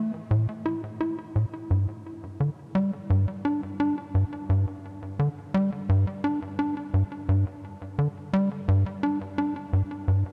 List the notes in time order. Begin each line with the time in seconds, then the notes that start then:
Already playing: A3
0.31 A2
0.66 E4
1.01 E4
1.36 A2
1.70 G2
2.40 D3
2.75 G3
3.10 G2
3.45 D4
3.80 D4
4.15 G2
4.50 G2
5.19 D3
5.54 G3
5.89 G2
6.24 D4
6.59 D4
6.94 G2
7.29 G2
7.99 D3
8.33 G3
8.68 G2
9.03 D4
9.38 D4
9.73 G2
10.08 G2